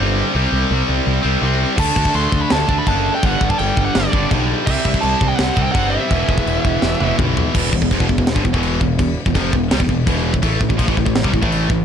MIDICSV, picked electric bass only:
0, 0, Header, 1, 2, 480
1, 0, Start_track
1, 0, Key_signature, 1, "minor"
1, 0, Tempo, 360144
1, 465, Time_signature, 4, 2, 24, 8
1, 15792, End_track
2, 0, Start_track
2, 0, Title_t, "Picked electric bass"
2, 0, Program_c, 0, 34
2, 3, Note_on_c, 0, 31, 87
2, 290, Note_off_c, 0, 31, 0
2, 466, Note_on_c, 0, 36, 93
2, 612, Note_off_c, 0, 36, 0
2, 698, Note_on_c, 0, 36, 93
2, 846, Note_off_c, 0, 36, 0
2, 943, Note_on_c, 0, 36, 95
2, 1089, Note_off_c, 0, 36, 0
2, 1184, Note_on_c, 0, 36, 88
2, 1330, Note_off_c, 0, 36, 0
2, 1426, Note_on_c, 0, 36, 92
2, 1571, Note_off_c, 0, 36, 0
2, 1659, Note_on_c, 0, 36, 88
2, 1807, Note_off_c, 0, 36, 0
2, 1893, Note_on_c, 0, 36, 82
2, 2189, Note_off_c, 0, 36, 0
2, 2368, Note_on_c, 0, 38, 92
2, 2519, Note_off_c, 0, 38, 0
2, 2618, Note_on_c, 0, 38, 95
2, 2766, Note_off_c, 0, 38, 0
2, 2862, Note_on_c, 0, 38, 98
2, 3008, Note_off_c, 0, 38, 0
2, 3095, Note_on_c, 0, 38, 92
2, 3243, Note_off_c, 0, 38, 0
2, 3357, Note_on_c, 0, 38, 96
2, 3499, Note_off_c, 0, 38, 0
2, 3580, Note_on_c, 0, 38, 88
2, 3727, Note_off_c, 0, 38, 0
2, 3825, Note_on_c, 0, 30, 88
2, 4116, Note_off_c, 0, 30, 0
2, 4309, Note_on_c, 0, 31, 95
2, 4453, Note_off_c, 0, 31, 0
2, 4550, Note_on_c, 0, 31, 94
2, 4693, Note_off_c, 0, 31, 0
2, 4798, Note_on_c, 0, 31, 97
2, 4938, Note_off_c, 0, 31, 0
2, 5034, Note_on_c, 0, 31, 85
2, 5176, Note_off_c, 0, 31, 0
2, 5270, Note_on_c, 0, 31, 94
2, 5413, Note_off_c, 0, 31, 0
2, 5509, Note_on_c, 0, 31, 92
2, 5652, Note_off_c, 0, 31, 0
2, 5747, Note_on_c, 0, 35, 79
2, 6037, Note_off_c, 0, 35, 0
2, 6225, Note_on_c, 0, 36, 100
2, 6369, Note_off_c, 0, 36, 0
2, 6470, Note_on_c, 0, 36, 101
2, 6613, Note_off_c, 0, 36, 0
2, 6709, Note_on_c, 0, 36, 95
2, 6852, Note_off_c, 0, 36, 0
2, 6947, Note_on_c, 0, 36, 90
2, 7090, Note_off_c, 0, 36, 0
2, 7187, Note_on_c, 0, 36, 97
2, 7331, Note_off_c, 0, 36, 0
2, 7423, Note_on_c, 0, 36, 88
2, 7568, Note_off_c, 0, 36, 0
2, 7660, Note_on_c, 0, 31, 87
2, 7952, Note_off_c, 0, 31, 0
2, 8143, Note_on_c, 0, 28, 93
2, 8288, Note_off_c, 0, 28, 0
2, 8377, Note_on_c, 0, 28, 98
2, 8524, Note_off_c, 0, 28, 0
2, 8611, Note_on_c, 0, 28, 91
2, 8760, Note_off_c, 0, 28, 0
2, 8864, Note_on_c, 0, 28, 85
2, 9009, Note_off_c, 0, 28, 0
2, 9101, Note_on_c, 0, 28, 92
2, 9247, Note_off_c, 0, 28, 0
2, 9335, Note_on_c, 0, 28, 89
2, 9483, Note_off_c, 0, 28, 0
2, 9587, Note_on_c, 0, 35, 84
2, 9877, Note_off_c, 0, 35, 0
2, 10063, Note_on_c, 0, 28, 89
2, 10285, Note_off_c, 0, 28, 0
2, 10298, Note_on_c, 0, 28, 85
2, 10410, Note_off_c, 0, 28, 0
2, 10422, Note_on_c, 0, 28, 82
2, 10533, Note_off_c, 0, 28, 0
2, 10552, Note_on_c, 0, 29, 99
2, 10658, Note_off_c, 0, 29, 0
2, 10665, Note_on_c, 0, 28, 91
2, 10774, Note_off_c, 0, 28, 0
2, 10790, Note_on_c, 0, 28, 81
2, 10897, Note_off_c, 0, 28, 0
2, 10904, Note_on_c, 0, 28, 81
2, 11125, Note_off_c, 0, 28, 0
2, 11148, Note_on_c, 0, 31, 96
2, 11252, Note_off_c, 0, 31, 0
2, 11260, Note_on_c, 0, 28, 74
2, 11372, Note_off_c, 0, 28, 0
2, 11391, Note_on_c, 0, 28, 90
2, 11721, Note_off_c, 0, 28, 0
2, 11749, Note_on_c, 0, 28, 79
2, 11968, Note_off_c, 0, 28, 0
2, 11987, Note_on_c, 0, 28, 81
2, 12208, Note_off_c, 0, 28, 0
2, 12346, Note_on_c, 0, 28, 82
2, 12456, Note_off_c, 0, 28, 0
2, 12470, Note_on_c, 0, 29, 97
2, 12690, Note_off_c, 0, 29, 0
2, 12710, Note_on_c, 0, 28, 79
2, 12929, Note_off_c, 0, 28, 0
2, 12956, Note_on_c, 0, 36, 95
2, 13059, Note_off_c, 0, 36, 0
2, 13067, Note_on_c, 0, 28, 88
2, 13176, Note_off_c, 0, 28, 0
2, 13185, Note_on_c, 0, 28, 76
2, 13407, Note_off_c, 0, 28, 0
2, 13426, Note_on_c, 0, 28, 89
2, 13760, Note_off_c, 0, 28, 0
2, 13783, Note_on_c, 0, 28, 89
2, 13895, Note_off_c, 0, 28, 0
2, 13905, Note_on_c, 0, 33, 88
2, 14128, Note_off_c, 0, 33, 0
2, 14136, Note_on_c, 0, 33, 85
2, 14251, Note_off_c, 0, 33, 0
2, 14268, Note_on_c, 0, 33, 90
2, 14378, Note_off_c, 0, 33, 0
2, 14389, Note_on_c, 0, 34, 101
2, 14499, Note_off_c, 0, 34, 0
2, 14506, Note_on_c, 0, 33, 93
2, 14617, Note_off_c, 0, 33, 0
2, 14628, Note_on_c, 0, 33, 82
2, 14738, Note_off_c, 0, 33, 0
2, 14750, Note_on_c, 0, 33, 80
2, 14971, Note_off_c, 0, 33, 0
2, 14988, Note_on_c, 0, 36, 102
2, 15098, Note_off_c, 0, 36, 0
2, 15116, Note_on_c, 0, 33, 84
2, 15223, Note_off_c, 0, 33, 0
2, 15230, Note_on_c, 0, 33, 103
2, 15563, Note_off_c, 0, 33, 0
2, 15588, Note_on_c, 0, 33, 81
2, 15792, Note_off_c, 0, 33, 0
2, 15792, End_track
0, 0, End_of_file